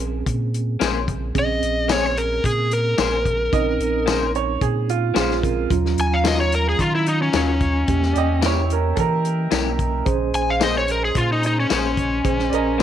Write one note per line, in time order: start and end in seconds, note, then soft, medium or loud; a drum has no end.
0.00 0.23 A#1 medium
0.00 1.31 C4 medium
0.00 1.31 C#4 medium
0.00 1.31 G#4 medium
0.26 0.77 A#2 medium
0.26 kick medium
0.26 closed hi-hat medium
0.54 closed hi-hat medium
0.80 1.32 A#1 medium
0.80 0.97 A#3 medium
0.80 0.97 C#4 medium
0.80 0.98 G#4 loud
0.80 0.98 C5 medium
0.80 snare loud
0.80 closed hi-hat medium
0.80 tambourine loud
1.08 kick medium
1.08 closed hi-hat medium
1.35 1.61 A#1 medium
1.35 3.49 C4 medium
1.35 3.48 C#4 medium
1.35 3.48 G#4 medium
1.35 kick loud
1.35 closed hi-hat medium
1.39 1.90 D#5 medium
1.62 2.40 A#1 medium
1.62 closed hi-hat medium
1.88 2.05 A#3 medium
1.88 2.06 C#4 medium
1.88 2.06 G#4 medium
1.88 2.06 C5 medium
1.88 2.04 C#5 medium
1.88 snare loud
1.88 closed hi-hat medium
1.88 tambourine loud
2.06 2.18 C#5 medium
2.17 2.44 A#4 medium
2.17 closed hi-hat medium
2.44 2.95 A#2 medium
2.44 2.71 G#4 medium
2.44 kick medium
2.44 closed hi-hat medium
2.71 4.31 A#4 medium
2.71 closed hi-hat medium
2.98 3.49 A#1 loud
2.98 3.14 A#3 medium
2.98 3.15 C#4 medium
2.98 3.15 G#4 medium
2.98 3.15 C5 medium
2.98 snare loud
2.98 closed hi-hat medium
2.98 tambourine loud
3.26 kick medium
3.26 closed hi-hat medium
3.52 3.78 A#1 medium
3.52 5.39 C4 medium
3.52 5.39 C#4 medium
3.52 5.39 D#4 medium
3.52 4.32 D#5 medium
3.52 kick loud
3.52 closed hi-hat medium
3.79 4.57 A#1 medium
3.79 closed hi-hat medium
4.06 4.23 A#3 medium
4.06 4.23 C#4 medium
4.06 4.24 G#4 medium
4.06 4.24 C5 medium
4.06 snare loud
4.06 closed hi-hat medium
4.06 tambourine loud
4.35 4.61 C#5 medium
4.35 closed hi-hat medium
4.61 5.12 A#2 medium
4.61 4.88 G#4 medium
4.61 kick medium
4.61 closed hi-hat medium
4.89 5.16 F4 medium
4.89 closed hi-hat medium
5.14 5.67 A#1 medium
5.14 5.67 G#3 medium
5.14 5.32 A#3 medium
5.14 5.32 C#4 medium
5.14 5.69 F4 medium
5.14 5.32 G#4 medium
5.14 5.32 C5 medium
5.14 snare loud
5.14 closed hi-hat medium
5.14 tambourine loud
5.31 snare soft
5.43 5.70 C4 medium
5.43 5.69 C#4 medium
5.43 5.70 A#4 medium
5.43 kick medium
5.43 closed hi-hat medium
5.70 5.96 D#2 loud
5.70 7.84 F#3 medium
5.70 7.84 C#4 medium
5.70 7.84 F4 medium
5.70 12.83 D#5 medium
5.70 7.86 F5 medium
5.70 7.86 A#5 medium
5.70 kick loud
5.70 closed hi-hat medium
5.85 snare soft
5.97 6.75 D#2 medium
5.97 6.13 G#5 medium
5.97 closed hi-hat medium
6.13 6.25 F5 medium
6.24 6.41 D#3 medium
6.24 6.41 F#3 medium
6.24 6.41 C#4 medium
6.24 6.42 F4 medium
6.24 snare loud
6.24 closed hi-hat medium
6.24 tambourine loud
6.28 6.40 D#5 medium
6.41 6.53 C#5 medium
6.52 6.67 A#4 medium
6.52 closed hi-hat medium
6.69 6.81 G#4 medium
6.79 7.30 D#3 medium
6.79 6.93 F4 medium
6.79 kick medium
6.79 closed hi-hat medium
6.95 7.07 E4 medium
7.06 7.21 D#4 medium
7.06 closed hi-hat medium
7.22 7.34 C#4 medium
7.33 7.84 D#2 medium
7.33 7.50 D#3 medium
7.33 7.50 F#3 medium
7.33 7.50 C#4 medium
7.33 8.41 C#4 medium
7.33 7.51 F4 medium
7.33 snare loud
7.33 closed hi-hat medium
7.33 tambourine loud
7.60 kick medium
7.60 closed hi-hat medium
7.88 8.14 E2 medium
7.88 9.49 A#3 medium
7.88 9.49 C#4 medium
7.88 9.49 G4 medium
7.88 10.05 E5 medium
7.88 10.05 G5 medium
7.88 kick loud
7.88 closed hi-hat medium
8.03 snare soft
8.13 8.93 E2 medium
8.13 8.42 G4 medium
8.13 8.16 D5 medium
8.13 closed hi-hat medium
8.18 8.43 D#5 medium
8.41 8.59 E3 medium
8.41 8.59 A#3 loud
8.41 8.59 C#4 medium
8.41 8.69 E4 medium
8.41 8.60 G4 medium
8.41 snare loud
8.41 closed hi-hat medium
8.41 tambourine loud
8.46 8.71 C#5 medium
8.70 8.97 C#4 medium
8.70 8.98 A#4 medium
8.70 closed hi-hat medium
8.96 9.48 E3 medium
8.96 8.99 A4 medium
8.96 kick medium
8.96 closed hi-hat medium
9.00 10.04 A#4 medium
9.25 closed hi-hat medium
9.51 10.03 B1 medium
9.51 9.68 E3 medium
9.51 10.06 A#3 medium
9.51 9.68 A#3 medium
9.51 9.68 C#4 medium
9.51 10.05 C#4 soft
9.51 9.69 G4 loud
9.51 10.06 A#4 medium
9.51 snare loud
9.51 closed hi-hat medium
9.51 tambourine loud
9.79 kick medium
9.79 closed hi-hat medium
10.06 10.32 A#1 loud
10.06 12.20 C#4 medium
10.06 12.20 G#4 medium
10.06 12.20 C5 medium
10.06 12.83 C5 medium
10.06 12.83 G#5 medium
10.06 kick loud
10.06 closed hi-hat medium
10.33 11.11 A#1 medium
10.33 10.48 G#5 medium
10.33 closed hi-hat medium
10.50 10.62 F5 medium
10.60 10.77 A#3 medium
10.60 10.77 C#4 medium
10.60 10.78 G#4 medium
10.60 10.78 C5 medium
10.60 10.75 D#5 medium
10.60 snare loud
10.60 closed hi-hat medium
10.60 tambourine loud
10.78 10.89 C#5 medium
10.88 11.03 A#4 medium
10.88 closed hi-hat medium
11.05 11.16 G#4 medium
11.15 11.66 A#2 medium
11.15 11.30 F4 medium
11.15 kick medium
11.15 closed hi-hat medium
11.33 11.44 D#4 medium
11.43 11.58 D#4 medium
11.43 closed hi-hat medium
11.60 11.71 C#4 medium
11.70 12.21 A#1 medium
11.70 11.86 A#3 medium
11.70 11.87 C#4 medium
11.70 12.78 C#4 medium
11.70 11.87 G#4 medium
11.70 11.87 C5 medium
11.70 snare loud
11.70 closed hi-hat medium
11.70 tambourine loud
11.97 kick medium
11.97 closed hi-hat medium
12.25 12.50 A#1 medium
12.25 12.83 C#4 medium
12.25 12.83 G#4 medium
12.25 12.83 C5 medium
12.25 kick loud
12.25 closed hi-hat medium
12.39 snare soft
12.49 12.83 A#1 medium
12.49 12.53 D5 medium
12.49 closed hi-hat medium
12.53 12.78 A#4 medium
12.53 12.79 D#5 medium
12.78 12.83 A#3 medium
12.78 12.83 C#4 medium
12.78 12.83 G#4 medium